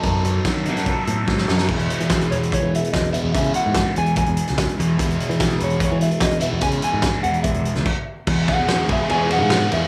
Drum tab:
CC |----------------|x---------------|----------------|----------------|
RD |----------------|----------------|----------------|----------------|
HH |x-x-x-xxx-x-----|-xxxxxxxx-xxxxx-|xxx-x-xxxxxxxxx-|xxxxxxxxx-xxxxx-|
SD |----o--o----oooo|----o-------o---|----o------oo---|----o-------o---|
BD |o---o---o---o---|o---o---o---o---|o---o---o---o---|o---o---o---o---|

CC |------------x---|x---------------|
RD |----------------|--x-x-x-x-x-x-x-|
HH |xxx-x-xxxxxx----|----------------|
SD |----o------o----|----o-------o---|
BD |o---o---o---o---|o-o---o---------|